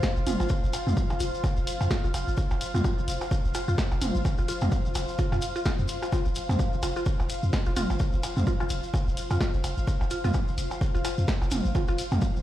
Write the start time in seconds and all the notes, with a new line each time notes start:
Already playing: F4 C5 F5
0.03 kick, snare, percussion blips, shekere
0.16 F1, shekere
0.26 F1 F4, closed hi-hat, mid tom, shekere
0.40 G#1 F4, percussion blips, shekere
0.49 kick, shekere
0.63 F1, shekere
0.73 closed hi-hat, percussion blips, shekere
0.87 F2, mid tom, shekere
0.97 kick, shekere
1.10 F4, percussion blips, shekere
1.20 F1 F4, closed hi-hat, shekere
1.34 shekere
1.44 kick, percussion blips, shekere
1.57 D#1, shekere
1.67 closed hi-hat, shekere
1.81 F2, percussion blips, shekere
1.91 F4, kick, snare, shekere
2.04 F1 F4, shekere
2.14 F1, closed hi-hat, percussion blips, shekere
2.28 G#1, shekere
2.37 kick, shekere
2.51 F1, percussion blips, shekere
2.61 closed hi-hat, shekere
2.74 F2 F4, mid tom, shekere
2.84 F4, kick, percussion blips, shekere
2.98 shekere
3.08 F1, closed hi-hat, shekere
3.21 percussion blips, shekere
3.31 kick, shekere
3.45 D#1, shekere
3.54 F4, closed hi-hat, percussion blips, shekere
3.68 F2 F4, shekere
3.78 kick, snare, shekere
3.91 F1, percussion blips, shekere
4.02 F1, closed hi-hat, mid tom, shekere
4.15 G#1, shekere
4.25 kick, percussion blips, shekere
4.38 F1 F4, shekere
4.48 F4, closed hi-hat, shekere
4.61 F2, mid tom, percussion blips, shekere
4.72 kick, shekere
4.85 shekere
4.95 F1, closed hi-hat, percussion blips, shekere
5.08 shekere
5.18 F4, kick, shekere
5.32 F2 F4, percussion blips, shekere
5.42 closed hi-hat, shekere
5.56 F4, shekere
5.65 F4, kick, snare, percussion blips, shekere
5.79 F2, shekere
5.88 closed hi-hat, shekere
6.02 F4, percussion blips, shekere
6.12 F4, kick, percussion blips, shekere
6.25 F1, shekere
6.35 closed hi-hat, shekere
6.49 F2, mid tom, percussion blips, shekere
6.59 kick, shekere
6.73 shekere
6.83 F1 F4, closed hi-hat, percussion blips, shekere
6.96 F4, shekere
7.06 kick, shekere
7.20 D#1, percussion blips, shekere
7.30 closed hi-hat, shekere
7.42 F2, shekere
7.53 kick, snare, percussion blips, shekere
7.66 F1 F4, shekere
7.76 F1 F4, closed hi-hat, mid tom, shekere
7.90 G#1, percussion blips, shekere
7.99 kick, shekere
8.12 F1, shekere
8.23 closed hi-hat, percussion blips, shekere
8.37 F2, mid tom, shekere
8.47 F4, kick, shekere
8.60 F4, percussion blips, shekere
8.69 F1, closed hi-hat, shekere
8.83 shekere
8.94 kick, percussion blips, shekere
9.07 D#1, shekere
9.17 closed hi-hat, shekere
9.30 F2 F4, percussion blips, shekere
9.41 F4, kick, snare, shekere
9.54 F1, shekere
9.64 F1, closed hi-hat, percussion blips, shekere
9.77 G#1, shekere
9.87 kick, shekere
10.01 F1, percussion blips, shekere
10.10 F4, closed hi-hat, shekere
10.24 F2 F4, mid tom, shekere
10.34 kick, percussion blips, shekere
10.48 shekere
10.58 F1, closed hi-hat, shekere
10.71 percussion blips, shekere
10.81 kick, shekere
10.95 D#1 F4, shekere
11.05 F4, closed hi-hat, percussion blips, shekere
11.18 F2, shekere
11.28 kick, snare, shekere
11.41 F1, percussion blips, shekere
11.51 F1, closed hi-hat, mid tom, shekere
11.65 G#1, shekere
11.75 F4, kick, percussion blips, shekere
11.88 F1 F4, shekere
11.98 closed hi-hat, shekere
12.12 F2, mid tom, percussion blips, shekere
12.21 kick, shekere
12.36 shekere